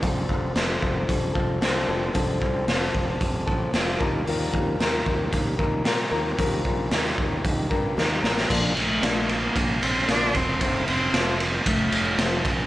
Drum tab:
CC |----------------|----------------|----------------|----------------|
RD |----------------|----------------|----------------|----------------|
HH |o---o---o---o---|o---o---o---o---|o---o---o---o---|o---o---o-------|
SD |----o-------o---|----o-------o---|----o-------o---|----oo------o-oo|
BD |o-o---o-o-o-----|o-o---o-o-o---o-|--o---o-o-o-----|o-o---o-o-o-----|

CC |x---------------|----------------|
RD |--x-x-x-x-x-x-x-|x-x-x-x-x-x-x-x-|
HH |----------------|----------------|
SD |----o-------o---|----o-------o---|
BD |o-------o-----o-|o-------o-----o-|